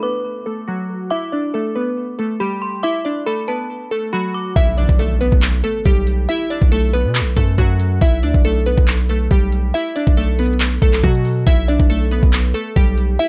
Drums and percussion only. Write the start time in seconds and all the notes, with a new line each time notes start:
4.56 kick, closed hi-hat
4.78 closed hi-hat
4.89 kick
4.99 closed hi-hat
5.21 closed hi-hat
5.32 kick
5.42 clap, closed hi-hat
5.64 closed hi-hat
5.85 kick, closed hi-hat
6.07 closed hi-hat
6.29 closed hi-hat
6.50 closed hi-hat
6.62 kick
6.72 closed hi-hat
6.93 closed hi-hat
7.15 clap, closed hi-hat
7.37 kick, closed hi-hat
7.58 kick, closed hi-hat
7.80 closed hi-hat
8.01 kick, closed hi-hat
8.23 closed hi-hat
8.34 kick
8.45 closed hi-hat
8.66 closed hi-hat
8.77 kick
8.87 clap, closed hi-hat
9.09 closed hi-hat
9.31 kick, closed hi-hat
9.52 closed hi-hat
9.74 closed hi-hat
9.96 closed hi-hat
10.07 kick
10.17 closed hi-hat
10.39 closed hi-hat, open hi-hat
10.46 closed hi-hat
10.53 closed hi-hat
10.60 clap, closed hi-hat
10.68 closed hi-hat
10.75 closed hi-hat
10.82 kick, closed hi-hat
10.93 clap
11.04 kick, closed hi-hat
11.15 closed hi-hat
11.25 open hi-hat
11.47 kick, closed hi-hat
11.68 closed hi-hat
11.80 kick
11.90 closed hi-hat
12.11 closed hi-hat
12.23 kick
12.33 clap, closed hi-hat
12.55 closed hi-hat
12.76 kick, closed hi-hat
12.98 closed hi-hat
13.19 closed hi-hat